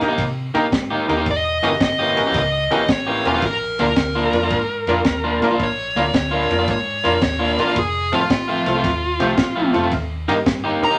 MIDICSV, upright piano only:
0, 0, Header, 1, 2, 480
1, 0, Start_track
1, 0, Tempo, 542005
1, 1116, Time_signature, 4, 2, 24, 8
1, 9729, End_track
2, 0, Start_track
2, 0, Title_t, "Upright piano"
2, 0, Program_c, 0, 0
2, 15, Note_on_c, 0, 67, 72
2, 16, Note_on_c, 0, 58, 80
2, 17, Note_on_c, 0, 63, 85
2, 18, Note_on_c, 0, 70, 90
2, 85, Note_off_c, 0, 58, 0
2, 85, Note_off_c, 0, 67, 0
2, 86, Note_off_c, 0, 63, 0
2, 86, Note_off_c, 0, 70, 0
2, 482, Note_on_c, 0, 67, 79
2, 483, Note_on_c, 0, 58, 81
2, 485, Note_on_c, 0, 70, 99
2, 487, Note_on_c, 0, 63, 78
2, 559, Note_off_c, 0, 58, 0
2, 559, Note_off_c, 0, 67, 0
2, 560, Note_off_c, 0, 70, 0
2, 561, Note_off_c, 0, 63, 0
2, 965, Note_on_c, 0, 70, 90
2, 967, Note_on_c, 0, 58, 82
2, 968, Note_on_c, 0, 67, 81
2, 970, Note_on_c, 0, 63, 77
2, 1040, Note_off_c, 0, 70, 0
2, 1041, Note_off_c, 0, 58, 0
2, 1042, Note_off_c, 0, 67, 0
2, 1043, Note_off_c, 0, 63, 0
2, 1441, Note_on_c, 0, 66, 67
2, 1442, Note_on_c, 0, 67, 66
2, 1444, Note_on_c, 0, 70, 75
2, 1446, Note_on_c, 0, 61, 70
2, 1518, Note_off_c, 0, 66, 0
2, 1519, Note_off_c, 0, 67, 0
2, 1520, Note_off_c, 0, 70, 0
2, 1521, Note_off_c, 0, 61, 0
2, 1916, Note_on_c, 0, 66, 70
2, 1917, Note_on_c, 0, 61, 70
2, 1917, Note_on_c, 0, 67, 63
2, 1919, Note_on_c, 0, 70, 81
2, 1996, Note_off_c, 0, 66, 0
2, 1997, Note_off_c, 0, 61, 0
2, 1997, Note_off_c, 0, 67, 0
2, 1998, Note_off_c, 0, 70, 0
2, 2396, Note_on_c, 0, 61, 74
2, 2396, Note_on_c, 0, 67, 67
2, 2400, Note_on_c, 0, 70, 81
2, 2401, Note_on_c, 0, 66, 67
2, 2476, Note_off_c, 0, 61, 0
2, 2476, Note_off_c, 0, 67, 0
2, 2478, Note_off_c, 0, 70, 0
2, 2479, Note_off_c, 0, 66, 0
2, 2883, Note_on_c, 0, 67, 69
2, 2883, Note_on_c, 0, 70, 71
2, 2885, Note_on_c, 0, 61, 76
2, 2886, Note_on_c, 0, 66, 67
2, 2960, Note_off_c, 0, 67, 0
2, 2960, Note_off_c, 0, 70, 0
2, 2961, Note_off_c, 0, 61, 0
2, 2961, Note_off_c, 0, 66, 0
2, 3360, Note_on_c, 0, 58, 68
2, 3363, Note_on_c, 0, 62, 66
2, 3363, Note_on_c, 0, 65, 68
2, 3365, Note_on_c, 0, 70, 82
2, 3438, Note_off_c, 0, 58, 0
2, 3440, Note_off_c, 0, 62, 0
2, 3440, Note_off_c, 0, 65, 0
2, 3441, Note_off_c, 0, 70, 0
2, 3841, Note_on_c, 0, 62, 66
2, 3843, Note_on_c, 0, 70, 72
2, 3844, Note_on_c, 0, 65, 64
2, 3845, Note_on_c, 0, 58, 64
2, 3919, Note_off_c, 0, 62, 0
2, 3920, Note_off_c, 0, 65, 0
2, 3920, Note_off_c, 0, 70, 0
2, 3921, Note_off_c, 0, 58, 0
2, 4327, Note_on_c, 0, 70, 94
2, 4328, Note_on_c, 0, 65, 76
2, 4330, Note_on_c, 0, 62, 76
2, 4331, Note_on_c, 0, 58, 92
2, 4402, Note_off_c, 0, 70, 0
2, 4403, Note_off_c, 0, 65, 0
2, 4404, Note_off_c, 0, 58, 0
2, 4404, Note_off_c, 0, 62, 0
2, 4806, Note_on_c, 0, 58, 89
2, 4810, Note_on_c, 0, 70, 92
2, 4812, Note_on_c, 0, 62, 80
2, 4815, Note_on_c, 0, 65, 84
2, 4882, Note_off_c, 0, 58, 0
2, 4883, Note_off_c, 0, 70, 0
2, 4885, Note_off_c, 0, 62, 0
2, 4886, Note_off_c, 0, 65, 0
2, 5293, Note_on_c, 0, 70, 75
2, 5294, Note_on_c, 0, 62, 60
2, 5295, Note_on_c, 0, 65, 62
2, 5297, Note_on_c, 0, 58, 71
2, 5365, Note_off_c, 0, 62, 0
2, 5365, Note_off_c, 0, 70, 0
2, 5366, Note_off_c, 0, 65, 0
2, 5367, Note_off_c, 0, 58, 0
2, 5770, Note_on_c, 0, 62, 58
2, 5771, Note_on_c, 0, 65, 60
2, 5775, Note_on_c, 0, 58, 66
2, 5775, Note_on_c, 0, 70, 77
2, 5843, Note_off_c, 0, 62, 0
2, 5844, Note_off_c, 0, 65, 0
2, 5846, Note_off_c, 0, 58, 0
2, 5846, Note_off_c, 0, 70, 0
2, 6250, Note_on_c, 0, 65, 58
2, 6250, Note_on_c, 0, 70, 79
2, 6252, Note_on_c, 0, 58, 68
2, 6252, Note_on_c, 0, 62, 68
2, 6323, Note_off_c, 0, 65, 0
2, 6323, Note_off_c, 0, 70, 0
2, 6324, Note_off_c, 0, 58, 0
2, 6324, Note_off_c, 0, 62, 0
2, 6730, Note_on_c, 0, 58, 70
2, 6732, Note_on_c, 0, 62, 59
2, 6733, Note_on_c, 0, 70, 67
2, 6736, Note_on_c, 0, 65, 61
2, 6803, Note_off_c, 0, 58, 0
2, 6804, Note_off_c, 0, 62, 0
2, 6805, Note_off_c, 0, 70, 0
2, 6806, Note_off_c, 0, 65, 0
2, 7193, Note_on_c, 0, 60, 70
2, 7193, Note_on_c, 0, 69, 75
2, 7195, Note_on_c, 0, 57, 66
2, 7196, Note_on_c, 0, 65, 62
2, 7274, Note_off_c, 0, 60, 0
2, 7274, Note_off_c, 0, 69, 0
2, 7275, Note_off_c, 0, 57, 0
2, 7276, Note_off_c, 0, 65, 0
2, 7676, Note_on_c, 0, 57, 74
2, 7678, Note_on_c, 0, 60, 66
2, 7681, Note_on_c, 0, 65, 66
2, 7682, Note_on_c, 0, 69, 78
2, 7755, Note_off_c, 0, 57, 0
2, 7756, Note_off_c, 0, 60, 0
2, 7758, Note_off_c, 0, 65, 0
2, 7758, Note_off_c, 0, 69, 0
2, 8144, Note_on_c, 0, 60, 86
2, 8147, Note_on_c, 0, 57, 89
2, 8148, Note_on_c, 0, 67, 89
2, 8149, Note_on_c, 0, 65, 81
2, 8229, Note_off_c, 0, 60, 0
2, 8230, Note_off_c, 0, 57, 0
2, 8231, Note_off_c, 0, 65, 0
2, 8231, Note_off_c, 0, 67, 0
2, 8615, Note_on_c, 0, 65, 80
2, 8617, Note_on_c, 0, 60, 70
2, 8619, Note_on_c, 0, 57, 89
2, 8623, Note_on_c, 0, 69, 89
2, 8704, Note_off_c, 0, 65, 0
2, 8705, Note_off_c, 0, 60, 0
2, 8706, Note_off_c, 0, 57, 0
2, 8708, Note_off_c, 0, 69, 0
2, 9105, Note_on_c, 0, 63, 80
2, 9106, Note_on_c, 0, 58, 84
2, 9106, Note_on_c, 0, 70, 88
2, 9108, Note_on_c, 0, 67, 77
2, 9188, Note_off_c, 0, 63, 0
2, 9189, Note_off_c, 0, 58, 0
2, 9189, Note_off_c, 0, 70, 0
2, 9190, Note_off_c, 0, 67, 0
2, 9587, Note_on_c, 0, 67, 59
2, 9588, Note_on_c, 0, 58, 71
2, 9589, Note_on_c, 0, 63, 70
2, 9589, Note_on_c, 0, 70, 84
2, 9669, Note_off_c, 0, 67, 0
2, 9670, Note_off_c, 0, 58, 0
2, 9670, Note_off_c, 0, 63, 0
2, 9670, Note_off_c, 0, 70, 0
2, 9729, End_track
0, 0, End_of_file